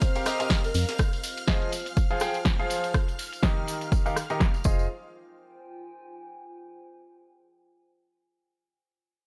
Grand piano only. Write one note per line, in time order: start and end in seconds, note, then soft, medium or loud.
0.00 0.12 C4 medium
0.00 0.12 G4 medium
0.00 0.12 A#4 medium
0.00 0.12 C5 medium
0.00 0.12 D#5 medium
0.16 0.24 C4 loud
0.16 0.24 G4 medium
0.16 0.24 A#4 medium
0.16 0.24 C5 medium
0.16 0.24 F5 loud
0.26 0.38 C4 medium
0.26 0.38 G4 medium
0.26 0.38 A#4 medium
0.26 0.38 C5 medium
0.26 0.38 D#5 loud
0.40 0.61 C4 medium
0.40 0.61 G4 medium
0.40 0.61 A#4 medium
0.40 0.61 C5 medium
0.40 0.61 D#5 loud
1.48 1.70 F3 medium
1.48 1.70 F4 medium
1.48 1.70 G#4 medium
1.48 1.70 C5 medium
1.48 1.70 D#5 medium
2.11 2.20 F3 loud
2.11 2.20 F4 medium
2.11 2.20 G#4 medium
2.11 2.20 C5 medium
2.11 2.20 F5 loud
2.21 2.36 F3 medium
2.21 2.36 F4 medium
2.21 2.36 G#4 medium
2.21 2.36 C5 medium
2.21 2.36 G5 loud
2.59 2.93 F3 medium
2.59 2.93 F4 medium
2.59 2.93 G#4 medium
2.59 2.93 C5 medium
2.59 2.93 F5 loud
3.43 4.02 D#3 medium
3.43 4.02 D#4 medium
3.43 4.02 G4 medium
3.43 4.02 A#4 medium
3.43 4.02 D#5 medium
4.06 4.14 D#3 medium
4.06 4.14 D#4 medium
4.06 4.14 G4 medium
4.06 4.14 A#4 medium
4.06 4.14 F5 loud
4.30 4.42 D#3 medium
4.30 4.42 D#4 medium
4.30 4.42 G4 medium
4.30 4.42 A#4 medium
4.30 4.42 D#5 medium
4.65 4.84 F4 medium
4.65 4.84 G#4 medium
4.65 4.84 C5 medium
4.65 4.84 D#5 medium